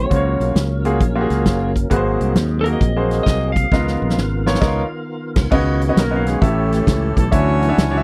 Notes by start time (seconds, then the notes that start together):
Already playing: C4 F#4 C#5
0.10 C#2 C#3 F#3 A#3 C#4 F4 F#4 A#4 C5, kick, closed hi-hat
0.16 C#5
0.40 B1, closed hi-hat
0.55 C#2, snare, closed hi-hat
0.85 A#3 F4 F#4 G#4, closed hi-hat
1.00 A#1, kick, closed hi-hat
1.15 A#3 F4 F#4 G4
1.21 G#4
1.30 C#2, snare, closed hi-hat
1.46 F#1, kick, snare, closed hi-hat
1.76 kick, closed hi-hat
1.90 G#1 G#2 F#3 A#3 C4 F#4 G#4 B4, kick, closed hi-hat
1.96 C5
2.21 C2, closed hi-hat
2.36 D#2, snare, closed hi-hat
2.61 A4 A#4
2.65 A#3 F#4 G#4 A#4, closed hi-hat
2.73 D#5
2.81 A#1, kick, closed hi-hat
2.96 A#3 F#4 G#4 C5
3.11 snare, closed hi-hat
3.23 C2 D#5, kick, snare, closed hi-hat
3.52 F5, kick
3.56 closed hi-hat
3.72 C#2 C#3 D#3 B3 F4 A#4 D#5, kick, snare
3.87 snare
4.02 A#1
4.10 snare
4.17 G#1, snare
4.46 B3 F4 A#4 C#5, snare
4.54 snare
4.61 C#2 B3 D#4 A#4 C#5, kick, snare, crash
4.67 F4
5.36 C#2, kick, snare, crash
5.50 C#2 C#3 D#3 B3 C#4 F#4 B4 C#5 D#5, kick, crash
5.81 closed hi-hat
5.89 C#4 F#4 B4 D#5
5.96 B1 A#3 A#4, snare, closed hi-hat
6.10 C#4 F#4 B4 D#5
6.16 F5
6.26 G#3 G#4, snare, closed hi-hat
6.41 A1 A2 E3 A3 C#4 E4 G4 A4 E5, kick, closed hi-hat
6.72 snare, closed hi-hat
6.87 C#2, kick, snare, closed hi-hat
7.16 B1 A3 A4, kick, closed hi-hat
7.31 D2 D3 E3 F#3 C#4 D4 E4 F#4 C#5 E5, kick, closed hi-hat
7.62 closed hi-hat
7.69 D4 F#4 C#5 E5
7.78 C#2, snare, closed hi-hat
7.91 D4 F#4 C#5 D5
7.97 E5